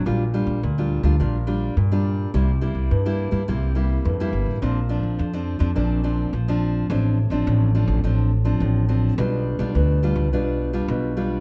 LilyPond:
<<
  \new Staff \with { instrumentName = "Nylon-string guitar" } { \time 4/4 \key g \dorian \tempo 4 = 105 << { <g d' f'>16 r16 <g d' f'>8 r16 <g d' f'>8 <g d' f'>16 <g d' f'>16 r16 <g d' f'>8 r16 <g d' f'>8. | <g bes e'>16 r16 <g bes e'>8. <g bes e'>8 <g bes e'>16 <g bes e'>8 <g bes e'>8. <g bes e'>8. | <f c' d'>16 r16 <f c' d'>8. <f c' d'>8 <f c' d'>16 <f c' d'>8 <f c' d'>8 r16 <f c' d'>8. | <f c' d'>8 r16 <f c' d'>8. <f c' d'>8 <f c' d'>8 r16 <f c' d'>8. <f c' d'>8 |
<g d' f'>8. <g d' f'>8. <g d' f'>8 <g d' f'>8. <g d' f'>8. <g d' f'>8 | } \\ { bes,4 bes,4 bes,4 bes,4 | c4 g,4 c4 g,4 | bes,4 f4 bes,4 f4 | a,4 a,4 a,4 a,4 |
b,4 b,4 b,4 b,4 | } >> }
  \new Staff \with { instrumentName = "Upright bass" } { \clef bass \time 4/4 \key g \dorian bes,,8. bes,,16 d,8. d,16 bes,,4 g,4 | c,8. c,16 g,8. g,16 c,4 f,8 g,,16 a,,16 | bes,,8. bes,,16 f,8. f,16 bes,,4 bes,,4 | a,,8. a,,16 a,,8. a,,16 a,,4 a,,4 |
b,,8. b,,16 d,8. d,16 b,,4 b,,4 | }
>>